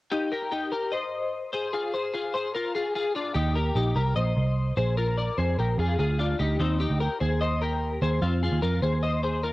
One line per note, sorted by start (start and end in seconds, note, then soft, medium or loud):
0.12 0.32 D#4 medium
0.12 0.31 G4 medium
0.32 0.51 G4 soft
0.32 0.52 A#4 medium
0.52 0.72 D#4 soft
0.52 0.71 G4 medium
0.72 0.93 G4 soft
0.72 0.92 A#4 medium
0.92 1.50 C5 medium
0.92 1.49 D#5 medium
1.53 1.72 G#4 soft
1.53 1.73 C5 medium
1.73 1.94 F4 medium
1.73 1.93 G#4 medium
1.94 2.12 G#4 medium
1.94 2.14 C5 medium
2.14 2.34 F4 soft
2.14 2.34 G#4 medium
2.34 2.54 G#4 soft
2.34 2.54 C5 medium
2.55 2.75 F4 medium
2.55 2.75 A#4 medium
2.75 2.95 F4 medium
2.75 2.94 G#4 medium
2.95 3.14 F4 medium
2.95 3.15 G#4 medium
3.15 3.35 D4 medium
3.15 3.34 F4 medium
3.34 3.70 D#2 medium
3.34 3.56 D#4 medium
3.34 3.55 G4 medium
3.55 3.75 G4 medium
3.55 3.76 A#4 medium
3.75 3.93 A#1 medium
3.75 3.96 D#4 soft
3.75 3.96 G4 medium
3.96 4.13 C2 medium
3.96 4.16 G4 soft
3.96 4.16 A#4 medium
4.16 4.33 A#1 medium
4.16 4.74 C5 medium
4.16 4.73 D#5 medium
4.37 4.71 C2 medium
4.77 5.29 A#1 medium
4.77 4.98 G#4 soft
4.77 4.97 C5 medium
4.97 5.18 F4 medium
4.97 5.17 A#4 medium
5.17 5.38 A#4 soft
5.17 5.38 D5 medium
5.38 5.55 F2 medium
5.38 5.59 G#4 soft
5.38 5.58 C5 medium
5.58 5.76 A#1 medium
5.58 5.79 G4 soft
5.58 5.79 A#4 medium
5.78 5.95 F2 medium
5.78 5.99 F4 medium
5.78 5.98 G#4 medium
5.99 6.33 D2 medium
5.99 6.18 F4 medium
5.99 6.19 G#4 medium
6.19 6.40 D4 medium
6.19 6.39 F4 medium
6.39 6.57 D2 medium
6.39 6.58 D#4 medium
6.39 6.60 G4 medium
6.60 6.85 D#2 medium
6.60 6.80 C4 medium
6.60 6.80 D#4 medium
6.80 7.01 D#4 soft
6.80 7.00 G4 medium
6.90 7.07 D2 medium
7.00 7.20 G4 medium
7.00 7.20 A#4 medium
7.20 7.98 D#2 medium
7.20 7.41 G#4 soft
7.20 7.40 C5 medium
7.41 7.61 C5 medium
7.41 7.61 D#5 medium
7.62 8.00 G4 medium
7.62 7.99 A#4 medium
8.02 8.19 D#2 medium
8.02 8.22 G#4 medium
8.02 8.22 C5 medium
8.22 8.48 F2 medium
8.22 8.43 C4 medium
8.22 8.42 F4 medium
8.43 8.62 F4 medium
8.43 8.62 G#4 medium
8.52 8.61 D#2 medium
8.62 8.80 F2 medium
8.62 8.83 F4 medium
8.62 8.82 A#4 medium
8.82 9.53 D#2 medium
8.82 9.03 G#4 soft
8.82 9.03 C5 medium
9.03 9.22 C5 medium
9.03 9.23 D#5 medium
9.23 9.43 G#4 medium
9.23 9.43 C5 medium
9.44 9.53 F4 medium
9.44 9.53 A#4 medium